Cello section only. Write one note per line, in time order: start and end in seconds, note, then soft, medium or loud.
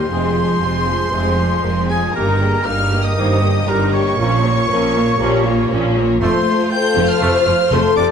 0.11 0.56 F2 medium
0.63 1.07 F2 medium
1.13 1.58 F2 medium
1.63 2.09 F2 medium
2.15 2.60 G2 medium
2.66 3.11 G2 medium
3.18 3.62 G2 medium
3.68 4.13 G2 medium
4.19 4.64 A#2 medium
4.70 5.14 A#2 medium
5.20 5.65 A#2 medium
5.70 6.15 A#2 medium
6.21 6.29 F2 medium
6.97 7.05 F2 loud
7.22 7.30 F2 medium
7.47 7.55 F2 medium
7.72 7.80 F2 loud
7.97 8.05 F2 medium